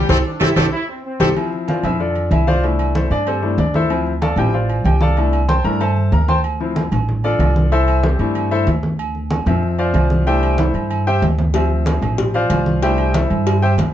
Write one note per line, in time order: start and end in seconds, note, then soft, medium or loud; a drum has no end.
0.09 0.21 C2 loud
0.09 0.17 A3 loud
0.09 0.17 C4 loud
0.09 0.17 E4 loud
0.09 0.20 G4 loud
0.09 0.20 A4 loud
0.09 0.20 C5 loud
0.09 cowbell medium
0.09 high conga loud
0.09 high timbale loud
0.25 0.40 D4 medium
0.40 0.53 C2 medium
0.40 0.48 A3 loud
0.40 0.48 C4 loud
0.40 0.48 E4 loud
0.40 0.57 E4 loud
0.40 0.51 G4 medium
0.40 0.51 A4 medium
0.40 0.51 C5 medium
0.40 cowbell loud
0.40 high conga medium
0.40 high timbale loud
0.56 0.68 C2 medium
0.56 0.64 A3 medium
0.56 0.64 C4 medium
0.56 0.72 D4 loud
0.56 0.64 E4 loud
0.56 0.67 G4 loud
0.56 0.67 A4 loud
0.56 0.67 C5 loud
0.56 cowbell medium
0.56 high conga loud
0.56 high timbale loud
0.72 0.87 E4 loud
0.88 1.03 C4 medium
1.04 1.34 C4 medium
1.20 1.32 C2 medium
1.20 1.28 A3 medium
1.20 1.28 C4 medium
1.20 1.28 E4 medium
1.20 1.30 G4 loud
1.20 1.30 A4 medium
1.20 1.30 C5 loud
1.20 cowbell loud
1.20 high conga loud
1.20 high timbale loud
1.36 1.83 F3 medium
1.36 1.83 C4 medium
1.36 1.83 E4 medium
1.36 high conga soft
1.36 low agogo loud
1.53 high conga soft
1.68 1.84 F4 medium
1.68 1.84 C5 medium
1.68 1.84 D5 soft
1.68 1.84 F5 medium
1.68 high conga medium
1.68 low timbale medium
1.68 low agogo medium
1.83 2.28 F2 medium
1.83 1.98 F3 medium
1.83 1.98 C4 soft
1.83 1.99 E4 medium
1.83 1.99 E5 medium
1.83 high conga soft
1.83 low conga medium
1.83 low agogo loud
2.00 2.30 D4 medium
2.00 2.29 F4 medium
2.00 2.30 A4 medium
2.00 2.29 D5 medium
2.00 high conga soft
2.15 high conga soft
2.15 low agogo medium
2.31 3.05 C2 medium
2.31 2.47 E4 medium
2.31 2.47 E5 medium
2.31 high conga medium
2.31 low timbale medium
2.31 low agogo loud
2.47 2.63 F4 medium
2.47 2.63 C5 medium
2.47 2.63 D5 medium
2.47 2.63 F5 loud
2.47 high conga medium
2.63 3.41 A3 medium
2.63 3.10 D4 medium
2.63 2.94 E4 medium
2.63 high conga soft
2.63 low agogo medium
2.79 high conga soft
2.79 low agogo loud
2.95 3.11 E4 medium
2.95 3.11 A4 medium
2.95 3.11 C5 medium
2.95 3.10 E5 medium
2.95 high conga medium
2.95 low timbale medium
3.10 3.55 G2 medium
3.10 3.27 D4 medium
3.10 3.27 D5 medium
3.10 high conga soft
3.10 low agogo medium
3.27 3.57 C4 soft
3.27 3.57 G4 soft
3.27 3.57 A4 soft
3.27 3.56 C5 medium
3.27 high conga soft
3.27 low agogo loud
3.42 3.57 A3 medium
3.42 3.57 D4 medium
3.42 3.57 E4 medium
3.42 high conga soft
3.58 4.32 D2 loud
3.58 3.74 D4 medium
3.58 3.74 D5 medium
3.58 high conga medium
3.58 low timbale medium
3.58 low agogo medium
3.74 3.90 E4 medium
3.74 3.90 A4 medium
3.74 3.90 C5 medium
3.74 3.90 E5 medium
3.74 high conga medium
3.90 4.11 F3 medium
3.90 4.12 C4 medium
3.90 4.12 E4 medium
3.90 high conga soft
3.90 low agogo loud
4.06 high conga soft
4.22 4.37 A4 medium
4.22 4.38 D5 medium
4.22 4.38 F5 medium
4.22 4.37 A5 medium
4.22 high conga medium
4.22 low timbale medium
4.22 low agogo medium
4.36 4.81 A1 medium
4.36 4.52 F3 medium
4.36 4.52 C4 medium
4.36 4.53 E4 medium
4.36 4.54 G4 medium
4.36 4.53 G5 medium
4.36 high conga soft
4.36 low conga medium
4.36 low agogo loud
4.53 4.84 F4 soft
4.53 4.84 C5 soft
4.53 4.84 D5 medium
4.53 4.83 F5 medium
4.53 high conga soft
4.69 high conga soft
4.69 low agogo medium
4.84 5.59 C2 medium
4.84 5.01 G4 medium
4.84 5.01 G5 medium
4.84 high conga medium
4.84 low timbale medium
4.84 low agogo loud
5.01 5.17 A4 medium
5.01 5.17 D5 medium
5.01 5.17 F5 medium
5.01 5.17 A5 medium
5.01 high conga medium
5.17 5.38 A3 medium
5.17 5.38 D4 medium
5.17 5.39 E4 medium
5.17 high conga soft
5.17 low agogo medium
5.33 high conga soft
5.33 low agogo loud
5.49 5.64 C5 medium
5.49 5.64 G5 medium
5.49 5.64 A5 medium
5.49 5.64 C6 medium
5.49 high conga medium
5.49 low timbale medium
5.64 6.09 G2 medium
5.64 5.79 A3 soft
5.64 5.79 D4 soft
5.64 5.79 E4 medium
5.64 5.80 A#4 medium
5.64 5.80 A#5 loud
5.64 high conga soft
5.64 low agogo medium
5.80 6.10 A4 medium
5.80 6.11 C5 medium
5.80 6.10 E5 medium
5.80 6.10 A5 medium
5.80 high conga soft
5.80 low agogo loud
5.96 high conga soft
6.12 6.86 D2 loud
6.12 6.28 A#4 medium
6.12 6.28 A#5 medium
6.12 high conga medium
6.12 low timbale medium
6.12 low agogo medium
6.28 6.38 C5 medium
6.28 6.38 G5 medium
6.28 6.39 A5 medium
6.28 6.38 C6 loud
6.28 high conga medium
6.44 high conga soft
6.44 low agogo loud
6.60 6.82 F3 medium
6.60 6.82 C4 soft
6.60 6.82 E4 medium
6.60 high conga soft
6.76 high conga medium
6.76 low timbale medium
6.76 low agogo medium
6.91 7.36 A1 medium
6.91 high conga soft
6.91 low conga medium
6.91 low agogo loud
7.09 high conga soft
7.09 low conga medium
7.24 7.69 D4 medium
7.24 7.69 F4 medium
7.24 7.69 A4 medium
7.24 7.69 D5 medium
7.24 high conga soft
7.24 low agogo medium
7.39 8.14 C2 medium
7.39 high conga medium
7.39 low timbale medium
7.39 low agogo loud
7.56 high conga medium
7.72 8.02 E4 medium
7.72 8.02 A4 medium
7.72 8.02 C5 medium
7.72 8.02 E5 loud
7.72 high conga soft
7.72 low agogo medium
7.88 high conga soft
7.88 low agogo loud
8.03 8.49 C4 soft
8.03 8.48 G4 soft
8.03 8.48 A4 soft
8.03 8.48 C5 medium
8.03 high conga loud
8.03 low timbale medium
8.19 8.64 G2 medium
8.19 8.65 A3 medium
8.19 8.65 D4 medium
8.19 8.50 E4 medium
8.19 high conga soft
8.19 low agogo medium
8.35 high conga soft
8.35 low agogo loud
8.51 8.67 E4 medium
8.51 8.67 A4 medium
8.51 8.67 C5 medium
8.51 8.67 E5 medium
8.51 high conga soft
8.67 9.41 D2 medium
8.67 high conga medium
8.67 low timbale medium
8.67 low agogo medium
8.83 high conga medium
8.99 high conga soft
8.99 low agogo loud
9.15 high conga soft
9.31 high conga medium
9.31 low timbale medium
9.31 low agogo medium
9.46 9.91 F2 medium
9.46 10.23 F3 medium
9.46 10.23 C4 medium
9.46 10.23 E5 medium
9.46 high conga soft
9.46 low conga medium
9.46 low agogo medium
9.63 high conga soft
9.79 10.24 F4 medium
9.79 10.24 C5 medium
9.79 10.23 D5 medium
9.79 10.23 F5 medium
9.79 high conga soft
9.79 low agogo medium
9.94 10.68 C2 loud
9.94 high conga medium
9.94 low timbale medium
9.94 low agogo loud
10.10 high conga medium
10.27 10.72 A3 medium
10.27 10.72 D4 medium
10.27 10.58 E4 medium
10.27 10.57 G4 medium
10.27 10.57 C5 medium
10.27 10.57 E5 medium
10.27 10.57 G5 loud
10.27 high conga soft
10.27 low agogo medium
10.43 high conga soft
10.43 low agogo loud
10.58 11.04 E4 soft
10.58 11.04 A4 soft
10.58 11.04 C5 soft
10.58 11.03 E5 soft
10.58 high conga medium
10.58 high timbale loud
10.74 11.19 G2 medium
10.74 high conga soft
10.74 low agogo medium
10.91 high conga soft
10.91 low agogo loud
11.07 11.22 G4 medium
11.07 11.22 C5 medium
11.07 11.22 E5 medium
11.07 11.22 G5 loud
11.07 high conga soft
11.22 11.97 D2 loud
11.22 high conga medium
11.22 low timbale loud
11.22 low agogo medium
11.38 high conga medium
11.38 low timbale medium
11.54 12.78 F3 medium
11.54 12.79 C4 soft
11.54 12.79 E5 medium
11.54 cowbell medium
11.54 high conga soft
11.54 low agogo loud
11.70 high conga soft
11.86 cowbell medium
11.86 high conga loud
11.86 low timbale medium
11.86 low agogo medium
12.02 12.47 A1 medium
12.02 high conga soft
12.02 low conga medium
12.02 low agogo medium
12.18 cowbell loud
12.18 high conga soft
12.18 low conga medium
12.34 12.79 F4 medium
12.34 12.79 C5 medium
12.34 12.79 D5 medium
12.34 12.79 F5 medium
12.34 high conga soft
12.34 low agogo medium
12.50 13.24 C2 medium
12.50 cowbell medium
12.50 high conga medium
12.50 low timbale medium
12.50 low agogo loud
12.66 high conga medium
12.82 13.04 A3 medium
12.82 13.04 D4 medium
12.82 13.04 E4 medium
12.82 13.13 G4 medium
12.82 13.13 C5 medium
12.82 13.13 E5 medium
12.82 13.12 G5 loud
12.82 cowbell medium
12.82 high conga soft
12.82 low agogo medium
12.98 high conga soft
12.98 low agogo loud
13.11 13.13 D#5 soft
13.11 13.59 E5 medium
13.11 cowbell medium
13.11 high conga medium
13.11 low timbale medium
13.15 13.60 E4 soft
13.15 13.59 A4 soft
13.15 13.59 C5 soft
13.30 13.75 G2 medium
13.30 high conga soft
13.30 low agogo medium
13.46 cowbell loud
13.46 high conga soft
13.46 low agogo loud
13.62 13.72 G4 medium
13.62 13.72 C5 medium
13.62 13.72 E5 medium
13.62 13.72 G5 loud
13.62 high conga soft
13.78 13.94 D2 medium
13.78 cowbell medium
13.78 high conga medium
13.78 low timbale medium
13.78 low agogo medium